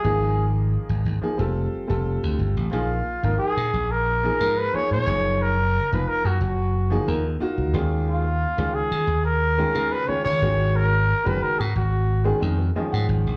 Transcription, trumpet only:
\new Staff \with { instrumentName = "Trumpet" } { \time 4/4 \key aes \lydian \tempo 4 = 90 aes'8. r2. r16 | \key ais \phrygian eis'4 gis'8. ais'4 b'16 cis''16 cis''8. | ais'8. b'16 ais'16 fis'16 fis'4 r4. | eis'4 gis'8. ais'4 b'16 cis''16 cis''8. |
ais'8. b'16 ais'16 fis'16 fis'4 r4. | }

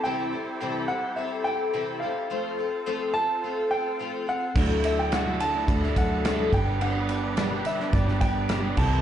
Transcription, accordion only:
\new Staff \with { instrumentName = "Accordion" } { \time 4/4 \key g \major \tempo 4 = 106 <e' g' a' c''>1 | <c' f' a' c''>1 | <e' fis' a' d''>2.~ <e' fis' a' d''>8 <d' g' b' d''>8~ | <d' g' b' d''>2.~ <d' g' b' d''>8 <e' g' a' c''>8 | }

